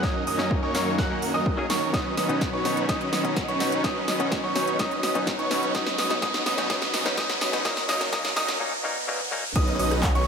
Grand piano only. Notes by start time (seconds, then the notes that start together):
0.03 D#6
0.27 D#6
0.63 C#6
0.98 F#6
1.34 D#6
1.70 C#6
1.94 D#6
2.17 D#6
2.53 C#6
2.89 D#6
3.13 D#6
3.48 C#6
3.84 D#6
4.08 D#6
4.44 C#6
4.79 D#6
5.03 D#6
5.39 C#6
5.75 D#6
5.98 D#6
6.22 D#6
6.46 D#6
6.70 D#6
6.94 D#6
7.18 D#6
7.41 D#6
7.65 D#6
7.89 D#6
8.13 D#6
8.37 D#6
9.56 D#6
9.79 D#6
10.15 C#6